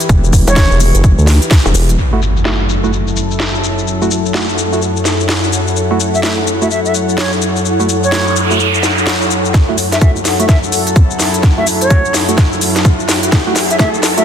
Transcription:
Already playing: E3 E4 G4 B4
0.00 closed hi-hat, shaker
0.09 E1, kick, closed hi-hat, shaker
0.24 shaker
0.33 E1, kick, open hi-hat, shaker
0.47 E1 C#5, closed hi-hat, shaker
0.56 kick, snare, closed hi-hat, shaker
0.71 E1, shaker
0.80 open hi-hat, shaker
0.95 F#1, closed hi-hat, shaker
1.04 kick, closed hi-hat, shaker
1.18 D2, shaker
1.27 snare, open hi-hat, shaker
1.42 closed hi-hat, shaker
1.51 kick, snare, closed hi-hat, shaker
1.66 E1, shaker
1.75 E1, open hi-hat, shaker
1.89 closed hi-hat, shaker
1.98 F#2 F#3 E4 A4, impact, shaker
2.13 A3 E4 F#4
2.22 shaker
2.35 A4, shaker
2.45 A3 E4 F#4, snare, shaker
2.61 C#5
2.69 shaker
2.84 A3 E4 F#4, shaker
2.93 shaker
3.03 F#5
3.08 shaker
3.17 shaker
3.31 shaker
3.40 snare, shaker
3.55 shaker
3.64 shaker
3.78 shaker
3.87 shaker
4.02 A3 E4 F#4, shaker
4.11 shaker
4.26 shaker
4.34 A3 E4 F#4, snare, shaker
4.49 shaker
4.58 shaker
4.73 A3 E4 F#4, shaker
4.82 shaker
4.97 shaker
5.05 snare, shaker
5.20 shaker
5.29 snare, shaker
5.44 shaker
5.53 shaker
5.67 shaker
5.77 shaker
5.91 A3 E4 F#4
6.00 shaker
6.14 E5, shaker
6.23 A3 E4 F#4 E5, snare, shaker
6.47 shaker
6.62 A3 E4 F#4 E5, shaker
6.71 E5, shaker
6.85 E5, shaker
6.95 shaker
7.09 shaker
7.18 C#5, snare, shaker
7.33 shaker
7.42 shaker
7.56 shaker
7.65 noise sweep, shaker
7.80 A3 E4 F#4, shaker
7.89 shaker
8.04 C#5, shaker
8.12 A3 E4 F#4, snare, shaker
8.27 shaker
8.36 shaker
8.51 A3 E4 F#4, shaker
8.60 shaker
8.74 shaker
8.83 snare, shaker
8.98 shaker
9.07 snare, shaker
9.22 shaker
9.31 shaker
9.45 shaker
9.54 F#2 F#3 E4 A4, kick, snare, closed hi-hat, riser, shaker
9.69 A3 E4 F#4
9.78 open hi-hat, shaker
9.92 E5, snare, closed hi-hat, shaker
10.01 A3 E4 F#4 E5, kick, closed hi-hat, shaker
10.16 shaker
10.25 snare, open hi-hat, shaker
10.40 A3 E4 F#4 E5, closed hi-hat, shaker
10.49 E5, kick, snare, closed hi-hat, shaker
10.63 shaker
10.72 open hi-hat, shaker
10.87 closed hi-hat, shaker
10.96 kick, closed hi-hat, shaker
11.11 shaker
11.20 snare, open hi-hat, shaker
11.34 closed hi-hat, shaker
11.43 kick, snare, closed hi-hat, shaker
11.58 A3 E4 F#4 E5
11.67 open hi-hat, shaker
11.81 C#5, closed hi-hat, shaker
11.90 A3 E4 F#4, kick, closed hi-hat, shaker
12.05 shaker
12.14 snare, open hi-hat, shaker
12.29 A3 E4 F#4, closed hi-hat, shaker
12.38 kick, snare, closed hi-hat, shaker
12.53 shaker
12.61 open hi-hat, shaker
12.76 snare, closed hi-hat, shaker
12.85 kick, closed hi-hat, shaker
13.00 shaker
13.09 snare, open hi-hat, shaker
13.23 closed hi-hat, shaker
13.32 kick, snare, closed hi-hat, shaker
13.47 A3 E4 F#4
13.56 snare, open hi-hat, shaker
13.70 E5, closed hi-hat, shaker
13.79 A3 E4 F#4 E5, kick, snare, closed hi-hat, shaker
13.94 shaker
14.03 snare, open hi-hat, shaker
14.18 A3 E4 F#4 E5, closed hi-hat, shaker

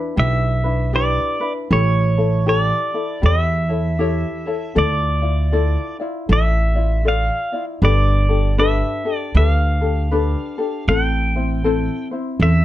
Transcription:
Already playing: D4 E4 B4
0.16 B1 D4 E4 G4 B4 E5
0.64 D4 E4 B4
0.93 D4 E4 G4 B4 D5
1.40 D4 E4 B4
1.70 A1 E4 G4 A4 C#5
2.16 E4 A4 C#5
2.46 E4 G4 A4 C#5
2.60 D5
2.94 E4 A4
3.22 E2 E4 G4 A4 C#5
3.26 E5
3.69 E4 A4 C#5
3.99 E4 G4 A4 C#5
4.46 E4 A4 C#5
4.75 D2 E4 F4 A4 D5
5.22 E4 F4 D5
5.52 E4 F4 A4 D5
6.00 E4 F4 D5
6.29 A1 E4 F4 A4 D5 E5
6.75 E4 F4 D5
7.05 F4 A4 D5 F5
7.53 E4 F4 D5
7.82 G1 D4 G4 A4 B4 D5
8.29 D4 G4 A4
8.58 D4 G4 A4 B4 E5
9.05 D4 G4 A4
9.17 D5
9.35 D2 D4 G4 A4 B4 E5
9.48 F5
9.81 D4 G4 A4
10.11 D4 G4 A4 B4
10.58 D4 G4 A4
10.88 A1 C4 E4 A4 C5 G5
11.35 C4 E4 C5
11.64 C4 E4 A4 C5
12.11 C4 E4 C5
12.40 E2 C4 E4 A4 C5 E5

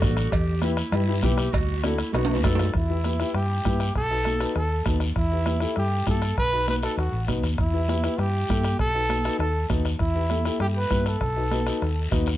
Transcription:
0.01 A1 D4 F#4 A4, bombo low, bombo rim, high conga, low conga, low timbale, short guiro
0.17 bombo rim, short guiro
0.31 E2 G4, bombo low, bombo rim, cowbell, high conga, long guiro
0.62 E4 G4 B4, bombo rim, high conga, short guiro
0.77 bombo rim, short guiro
0.92 G2 E4 G4 B4, bombo rim, cowbell, high conga, low conga, long guiro
1.08 E4 G4 B4
1.22 B1 E4 G4 B4, bombo low, bombo rim, high conga, short guiro
1.38 bombo rim, short guiro
1.52 D2 F#4, bombo low, bombo rim, cowbell, high conga, low conga, long guiro
1.83 D4 E4 F#4 A4, bombo rim, high conga, short guiro
1.98 bombo rim, short guiro
2.13 B1 D#4 F#4 B4, bombo rim, cowbell, high conga, high timbale, long guiro
2.25 high timbale
2.29 D#4 F#4 B4, high conga
2.35 low timbale
2.44 F#2 D#4 F#4 A4 B4, bombo low, bombo rim, low timbale, short guiro
2.55 low timbale, short guiro
2.59 bombo rim, low conga
2.65 low timbale
2.74 E2 E4, bombo low, bombo rim, high conga, long guiro
2.89 E4 G4 B4
3.04 E4 G4 B4, bombo rim, high conga, short guiro
3.20 E4 G4 B4, bombo rim, short guiro
3.34 G2 G4, bombo rim, high conga, long guiro
3.65 G2 E4 G4 B4, bombo low, bombo rim, high conga, short guiro
3.80 bombo rim, short guiro
3.95 B1 A4, bombo low, bombo rim, high conga, long guiro
4.10 D#4 F#4 B4
4.25 D#4 F#4 A4, bombo rim, high conga, short guiro
4.40 D#4 F#4 B4, bombo rim, short guiro
4.56 D#2 A4, bombo rim, long guiro
4.85 D#2 D#4 F#4 B4, bombo low, bombo rim, high conga, short guiro
5.00 bombo rim, short guiro
5.16 E2 E4, bombo low, bombo rim, long guiro
5.32 E4 G4 B4
5.46 E4 G4 B4, bombo rim, high conga, short guiro
5.60 E4 G4 A4, bombo rim, short guiro
5.76 G2 G4, bombo rim, long guiro
6.07 G2 E4 G4 A4, bombo low, bombo rim, high conga, short guiro
6.22 bombo rim, short guiro
6.37 B1 B4, bombo low, bombo rim, high conga, long guiro
6.53 D#4 F#4 B4
6.67 D#4 F#4 B4, bombo rim, high conga, short guiro
6.83 D#4 F#4 A4 B4, bombo rim, short guiro
6.97 D#2 F#4, bombo rim, high conga, long guiro
7.12 A1
7.27 B1 D#4 F#4 B4, bombo low, bombo rim, high conga, short guiro
7.43 D#2, bombo rim, short guiro
7.58 E2 E4, bombo low, bombo rim, long guiro
7.73 E4 G4 B4
7.88 E4 G4 B4, bombo rim, high conga, short guiro
8.04 E4 G4 B4, bombo rim, short guiro
8.18 G2 G4, bombo rim, long guiro
8.48 G2 E4 G4 A4, bombo low, bombo rim, high conga, short guiro
8.64 bombo rim, short guiro
8.79 B1 A4, bombo low, bombo rim, long guiro
8.94 D#4 F#4 B4
9.09 D#4 F#4 B4, bombo rim, high conga, short guiro
9.24 D#4 F#4 B4, bombo rim, short guiro
9.39 D#2 A4, bombo rim, long guiro
9.70 D#2 D#4 F#4 B4, bombo low, bombo rim, high conga, short guiro
9.85 bombo rim, short guiro
9.99 E2 E4, bombo low, bombo rim, long guiro
10.15 E4 G4 B4
10.30 E4 G4 A4, bombo rim, high conga, short guiro
10.45 E4 G4 A4, bombo rim, short guiro
10.60 G2 G4, bombo rim, long guiro
10.77 B4
10.90 G2 E4 G4 B4, bombo low, bombo rim, high conga, short guiro
11.06 A4, bombo rim, short guiro
11.21 B1, bombo low, bombo rim, long guiro
11.36 D#4 F#4 B4
11.51 D#4 F#4 B4, bombo rim, high conga, short guiro
11.66 D#4 F#4 B4, bombo rim, short guiro
11.82 D#2, bombo rim, long guiro
12.11 D#2 D#4 F#4 B4, bombo low, bombo rim, high conga, short guiro
12.26 bombo rim, short guiro

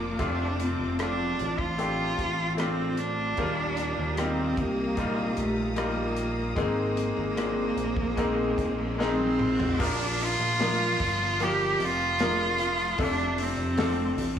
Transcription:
Already playing: F1 A#2 F3 A#3 D4 F4 D5 A#5 D6, downlifter
0.19 F1 C3 A3 C4 D4 F4 C5 A5, kick, closed hi-hat
0.60 C4, closed hi-hat
0.80 F1
0.99 A3 C4 D4 F4, cross-stick, closed hi-hat
1.39 A1, closed hi-hat
1.58 F4, kick
1.78 A3 C4 D4 G4, closed hi-hat
2.18 A1, kick, closed hi-hat
2.57 A3 C4 D4 F4, cross-stick, closed hi-hat
2.97 D4, closed hi-hat
3.37 D#2 A#2 D#3 G3 A#3 F4 G4 F5 A#5 D#6, kick, closed hi-hat
3.77 closed hi-hat
3.98 D#2
4.17 G3 A#3 C4 D#4 G4, cross-stick, closed hi-hat
4.57 C2 A#3, kick, closed hi-hat
4.97 A#2 G3 D#4 F4, kick, closed hi-hat
5.37 A#1 A3, closed hi-hat
5.76 G3 A#3 D#4 F4, cross-stick, closed hi-hat
5.80 A#3
6.16 closed hi-hat
6.56 G#1 G#2 D#3 G#3 A#3 C4 D#4 G#4 C5, kick, closed hi-hat, riser
6.60 A#3
6.97 closed hi-hat
7.17 G#1
7.36 G#3 A#3 C4 D4, cross-stick, closed hi-hat
7.77 A#1, closed hi-hat
7.97 kick
8.17 G#3 A#3 C4 D#4, kick, closed hi-hat
8.58 A#1, kick, closed hi-hat
8.98 G#3 A#3 C4 D#4, snare
9.05 C4
9.20 high tom
9.39 mid tom
9.60 floor tom
9.79 A#1 A#2 F3 A#3 D4 F4 A#4, kick, crash, downlifter
9.84 D4
10.20 F4, hi-hat pedal, open hi-hat
10.40 A#1
10.59 F3 A#3 D4 F4 A#4, snare, hi-hat pedal, open hi-hat
10.99 G1, kick, hi-hat pedal, open hi-hat
11.40 F3 A#3 D4 F4 G4, hi-hat pedal, open hi-hat
11.79 F1, hi-hat pedal, open hi-hat
11.85 F4
12.19 F3 A#3 D4 F4 A#4, snare, hi-hat pedal, open hi-hat
12.58 hi-hat pedal, open hi-hat
12.78 open hi-hat
12.98 F1 C3 A3 C4 D4 F4 A4, kick, hi-hat pedal, open hi-hat
13.19 hi-hat pedal
13.38 C4, hi-hat pedal, open hi-hat
13.58 F1
13.77 A3 C4 D4 F4 A4, snare, hi-hat pedal, open hi-hat
14.18 A1, hi-hat pedal, open hi-hat

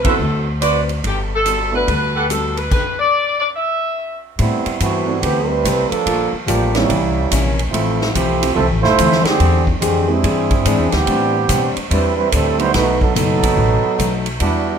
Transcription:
0.04 D#2 B3 C4 E4 F#4 A4 B4 C5 E5, kick, ride
0.19 D2 D3 C4 F#4 B4
0.61 D3 C4 F#4 B4 C5 D5, hi-hat pedal, ride
0.89 ride
1.04 G1 G3 B3 F#4 G4 A4, kick, ride
1.35 A4
1.45 G3 B3 F#4 A4, hi-hat pedal, ride
1.72 A3 B3 D4 F#4
1.76 B4
1.87 D2 G3 B3 F#4 A4, kick, ride
2.15 G4 A4 B4 F#5
2.30 G3 B3 F#4 A4, hi-hat pedal, ride
2.57 B4, ride
2.71 B4, kick, crash
2.99 D5
3.40 D5
3.56 E5
4.39 A2 G3 A3 B3 C4 E4 G4 B4, kick, ride
4.66 muted upright bass stroke, ride
4.80 G2 E3 A3 B3 C4 F#4 G4 B4, kick, hi-hat pedal, ride
5.07 G3 A3 B3 C4 E4
5.21 D2 E3 A3 B3 C4 G4, kick, ride
5.25 C4 G4 B4
5.47 G3 C4 E4 B4
5.65 C2 A3 C4 G4 B4, kick, hi-hat pedal, ride
5.89 F3 A#3 D4 A4, muted upright bass stroke, ride
6.06 A#1 G3 A#3 F4 A4, kick, ride
6.33 muted upright bass stroke
6.46 A1 F3 G3 A#3 D4 F4 G4 A4, kick, hi-hat pedal, ride
6.74 G3 A#3 C4 C#4 E4, snare, ride
6.90 C2 C3 E3 A#3 C#4, kick, ride
7.31 A#1 C3 E3 A#3 C#4, kick, hi-hat pedal, ride
7.59 ride
7.69 A1 F2 A3 C4 E4 F4
7.74 E3 A3 C4, kick, ride
8.01 snare
8.12 B1 F2 E3 F3 A3 C4 E4 G4, kick, hi-hat pedal, ride
8.16 C4
8.41 F3 A3 C4 E4 G4, ride
8.54 C2 F2 E3 F3 C4 E4 A4, kick
8.59 A3 C4
8.70 A1
8.82 F1 A3 E4 F4 C5, snare
8.98 D2 F2 E3 A3 C4, kick, hi-hat pedal, ride
9.12 snare
9.24 D3 C4 G4 G#4, muted upright bass stroke, snare, ride
9.40 E2 E3 C4 D4 G#4, kick, ride
9.67 kick
9.79 F2 D3 E3 G#3 C4 D4 G4, kick, hi-hat pedal, ride
9.83 G#4
10.08 E3 G#3 C4 D4 E4 G4 G#4
10.23 G2 E3 C4 D4 G#4, kick, ride
10.51 kick, ride
10.65 G#2 E3 C4 D4 G#4, kick, hi-hat pedal, ride
10.79 E2
10.90 D2 E3 B3 C4 G4, snare, ride
11.07 A2 G3 C4 D4, kick, ride
11.49 A2 B2 G3 C4 D4, kick, hi-hat pedal, ride
11.77 muted upright bass stroke, ride
11.89 E2 A2 G3 C4 D4 E4 B4, kick, ride
12.16 G3 C4 E4 B4
12.32 D2 A2 G3 C4 D4 E4 A4, kick, hi-hat pedal, ride
12.58 F#3 G3 A3 B3 D#4 E4 F#4 C5, ride
12.73 B1 B2 F#3 A3 D#4 F#4 B4, kick, snare, ride
13.00 F#3 B3 D#4 A4, kick
13.14 F#1 B2 F#3 A3 B3 D#4 A4, kick, hi-hat pedal, ride
13.43 kick, ride
13.56 A1 B2 F#3 A3 D#4, kick
13.83 muted upright bass stroke
13.98 B1 B2 F#3 A3 D#4, kick, hi-hat pedal, ride
14.26 ride
14.39 E2 E3 G3 B3 D4 E4 F#4, kick, ride

